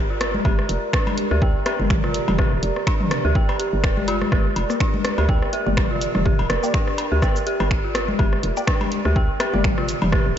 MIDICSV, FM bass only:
0, 0, Header, 1, 2, 480
1, 0, Start_track
1, 0, Key_signature, -2, "minor"
1, 0, Tempo, 483871
1, 446, Time_signature, 4, 2, 24, 8
1, 10300, End_track
2, 0, Start_track
2, 0, Title_t, "FM bass"
2, 0, Program_c, 0, 39
2, 0, Note_on_c, 0, 31, 83
2, 379, Note_off_c, 0, 31, 0
2, 446, Note_on_c, 0, 31, 91
2, 603, Note_off_c, 0, 31, 0
2, 686, Note_on_c, 0, 29, 87
2, 768, Note_off_c, 0, 29, 0
2, 1301, Note_on_c, 0, 38, 77
2, 1541, Note_on_c, 0, 31, 88
2, 1556, Note_off_c, 0, 38, 0
2, 1604, Note_off_c, 0, 31, 0
2, 1782, Note_on_c, 0, 31, 84
2, 2176, Note_off_c, 0, 31, 0
2, 2262, Note_on_c, 0, 29, 91
2, 2394, Note_off_c, 0, 29, 0
2, 2502, Note_on_c, 0, 26, 82
2, 2565, Note_off_c, 0, 26, 0
2, 2606, Note_on_c, 0, 29, 85
2, 2688, Note_off_c, 0, 29, 0
2, 3221, Note_on_c, 0, 38, 76
2, 3354, Note_off_c, 0, 38, 0
2, 3701, Note_on_c, 0, 31, 81
2, 3806, Note_on_c, 0, 29, 86
2, 3821, Note_off_c, 0, 31, 0
2, 4045, Note_on_c, 0, 31, 81
2, 4060, Note_off_c, 0, 29, 0
2, 4202, Note_off_c, 0, 31, 0
2, 4286, Note_on_c, 0, 31, 94
2, 4442, Note_off_c, 0, 31, 0
2, 4526, Note_on_c, 0, 29, 88
2, 4607, Note_off_c, 0, 29, 0
2, 5141, Note_on_c, 0, 38, 78
2, 5381, Note_on_c, 0, 31, 90
2, 5395, Note_off_c, 0, 38, 0
2, 5444, Note_off_c, 0, 31, 0
2, 5620, Note_on_c, 0, 31, 87
2, 6015, Note_off_c, 0, 31, 0
2, 6101, Note_on_c, 0, 29, 92
2, 6234, Note_off_c, 0, 29, 0
2, 6340, Note_on_c, 0, 26, 82
2, 6404, Note_off_c, 0, 26, 0
2, 6446, Note_on_c, 0, 29, 83
2, 6527, Note_off_c, 0, 29, 0
2, 7061, Note_on_c, 0, 38, 81
2, 7194, Note_off_c, 0, 38, 0
2, 7541, Note_on_c, 0, 31, 83
2, 8059, Note_off_c, 0, 31, 0
2, 8126, Note_on_c, 0, 31, 93
2, 8283, Note_off_c, 0, 31, 0
2, 8366, Note_on_c, 0, 29, 85
2, 8447, Note_off_c, 0, 29, 0
2, 8981, Note_on_c, 0, 38, 82
2, 9221, Note_on_c, 0, 31, 92
2, 9235, Note_off_c, 0, 38, 0
2, 9284, Note_off_c, 0, 31, 0
2, 9461, Note_on_c, 0, 31, 86
2, 9855, Note_off_c, 0, 31, 0
2, 9940, Note_on_c, 0, 29, 91
2, 10073, Note_off_c, 0, 29, 0
2, 10181, Note_on_c, 0, 26, 83
2, 10244, Note_off_c, 0, 26, 0
2, 10300, End_track
0, 0, End_of_file